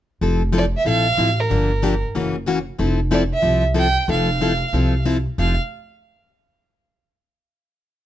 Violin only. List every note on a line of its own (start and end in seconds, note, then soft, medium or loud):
0.58 0.66 D5 medium
0.77 0.87 E5 medium
0.89 1.42 F5 loud
1.40 2.03 A#4 medium
3.14 3.22 D5 medium
3.33 3.62 E5 medium
3.79 4.08 G5 loud
4.12 5.03 F5 medium
5.40 5.57 F5 medium